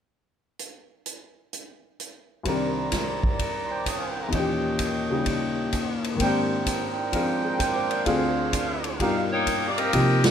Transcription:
0.59 closed hi-hat
1.06 closed hi-hat
1.53 closed hi-hat
2.00 closed hi-hat
2.43 C2 C3 D#3 C5 D5 A#5, kick, ride
2.48 D4 A#4
2.92 kick, snare, hi-hat pedal, ride
3.24 kick
3.39 kick, ride
3.63 C6
3.70 C5 G5 D6
3.86 D#6, kick, hi-hat pedal, ride
3.97 F5
4.09 G5
4.21 A#5
4.28 D#2 A#2
4.32 E3 C#5 D#5 G5, kick, ride
4.36 C#4 G4
4.79 kick, hi-hat pedal, ride
5.10 C#3 G3 D#4 G4
5.26 kick, ride
5.72 kick, hi-hat pedal, ride
6.04 ride
6.14 G#2 D#3 A#3
6.20 C4 D4 A#4 C5 G5, kick, ride
6.25 G4
6.66 kick, hi-hat pedal, ride
7.12 F3 C4 D4 G#4 A#4 F5, kick, ride
7.37 G#5
7.44 G#4 A#5
7.59 A#4 C6, kick, hi-hat pedal, ride
7.71 D6
7.75 C5
7.83 D#6
7.91 D5, ride
7.95 F5
8.06 D2 D3 C4 D4 F4 G#4 C5 F5, kick, ride
8.53 kick, hi-hat pedal, ride
8.84 ride
8.99 G2 B2 G3 D#4 F4 G4 A#4 F5, kick, ride
9.32 A#3 D#4 G4 C#5
9.47 kick, hi-hat pedal, ride
9.68 D5
9.77 C4 G4 A#4 D#5, ride
9.93 C3 F3 A#3 D#4 G4, kick, ride
10.24 A#3 D#4 G4 C5, snare, ride

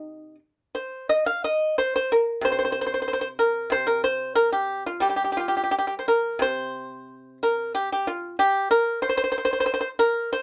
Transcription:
Already playing: C3 D#4
0.75 C5
1.09 D#5
1.26 F5
1.44 D#5
1.78 C5
1.96 C5
2.12 A#4
2.41 C3 C5
2.52 C5
2.59 C5
2.65 C5
2.72 C5
2.81 C5
2.87 C5
2.94 C5
3.02 C5
3.08 C5
3.13 C5
3.21 C5
3.39 A#4
3.70 C3 C5
3.87 A#4
4.04 C5
4.35 A#4
4.53 G4
4.86 F4
5.00 G3 G4
5.09 G4
5.16 G4
5.24 G4
5.32 G4
5.37 F4 G4
5.48 G4
5.57 G4
5.64 G4
5.71 G4
5.79 G4
5.87 G4
5.99 C5
6.08 A#4
6.39 C3 C5
7.43 A#4
7.75 G4
7.92 G4
8.07 F4
8.39 G4
8.71 A#4
9.02 C5
9.09 C5
9.17 C5
9.24 C5
9.32 C5
9.38 C5
9.45 C5
9.53 C5
9.60 C5
9.66 C5
9.74 C5
9.81 C5
9.99 A#4
10.33 C5

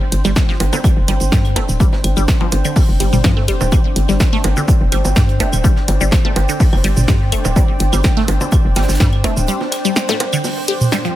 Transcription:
Already playing: C4 D4 C5 G5
0.12 G1, closed hi-hat, shaker
0.24 G1 G3, snare, low bongo, cabasa, claves
0.36 kick, snare, cabasa, shaker
0.49 F3, snare
0.60 G1, closed hi-hat, high bongo, shaker
0.73 D3, low bongo, cabasa
0.84 kick, cabasa, claves, shaker
0.97 F1
1.08 G1 G3, closed hi-hat, low bongo, shaker
1.20 G1, closed hi-hat, cabasa
1.32 G2 G3, kick, snare, cabasa, shaker
1.45 closed hi-hat, claves
1.56 F1 A3, closed hi-hat, high bongo, low bongo
1.69 D1, cabasa
1.80 G3, kick, cabasa, shaker
1.93 snare, low bongo
2.04 G1, closed hi-hat, claves, shaker
2.17 G1 G3, cabasa
2.28 kick, snare, cabasa, shaker
2.41 F3, low bongo
2.52 G1, closed hi-hat, high bongo, shaker
2.64 D3, closed hi-hat, cabasa, claves
2.76 kick, open hi-hat, low bongo, cabasa
2.89 F1
3.00 G1 G3, closed hi-hat, shaker
3.13 G1 G3, mid tom, cabasa
3.24 G2 F3, kick, snare, low bongo, cabasa, claves, shaker
3.37 A3
3.48 F1 G3, closed hi-hat, shaker
3.61 D1, high bongo, low bongo, cabasa
3.72 G3 D5, kick, low bongo, cabasa, claves, shaker
3.96 G1, closed hi-hat, shaker
4.09 G1 G3, snare, cabasa
4.20 kick, snare, low bongo, cabasa, shaker
4.33 A3, snare, claves
4.44 G1, closed hi-hat, high bongo, shaker
4.57 D3, low bongo, cabasa
4.68 kick, cabasa, shaker
4.81 F1
4.92 G1 G3, closed hi-hat, claves, shaker
5.05 G1, closed hi-hat, low bongo, cabasa
5.16 G2 G3, kick, snare, cabasa, shaker
5.29 closed hi-hat
5.40 F1 A3, closed hi-hat, high bongo, low bongo, shaker
5.53 D1, closed hi-hat, cabasa, claves
5.64 G3, kick, cabasa, shaker
5.76 snare
5.88 G1, closed hi-hat, low bongo, shaker
6.01 G1 G3, cabasa
6.11 kick, snare, cabasa, claves, shaker
6.25 A3, low bongo
6.36 G1, closed hi-hat, high bongo, shaker
6.49 D3, closed hi-hat, cabasa
6.60 kick, open hi-hat, cabasa
6.73 F1, low bongo, claves
6.84 G1 G3, closed hi-hat, shaker
6.97 G1, mid tom, cabasa
7.08 G2 G3, kick, snare, low bongo, cabasa, shaker
7.32 F1 A3, closed hi-hat, claves, shaker
7.45 D1, high bongo, cabasa
7.56 G3, kick, low bongo, cabasa, shaker
7.80 G1, closed hi-hat, shaker
7.93 G1 G3, snare, low bongo, cabasa, claves
8.04 kick, snare, cabasa, shaker
8.17 A3, snare
8.28 G1, closed hi-hat, high bongo, shaker
8.41 D3, low bongo, cabasa
8.52 kick, cabasa, claves, shaker
8.65 F1
8.75 G1 G3, snare, closed hi-hat, low bongo, shaker
8.82 snare, shaker
8.89 G1, snare, cabasa, shaker
8.94 snare, shaker
9.00 G2 G3, kick, snare, cabasa
9.13 closed hi-hat, claves
9.24 F1 A3, closed hi-hat, high bongo, low bongo, shaker
9.37 D1, closed hi-hat, cabasa
9.47 G3, cabasa, shaker
9.61 snare, low bongo
9.72 snare, closed hi-hat, claves, shaker
9.85 G3, cabasa
9.96 snare, cabasa, shaker
10.09 A3, snare, low bongo, shaker
10.20 closed hi-hat, high bongo
10.33 D3, cabasa, claves, shaker
10.44 open hi-hat, low bongo, cabasa
10.68 G4, closed hi-hat
10.81 mid tom, cabasa
10.92 G3, snare, low bongo, cabasa, claves, shaker
11.05 F3, closed hi-hat

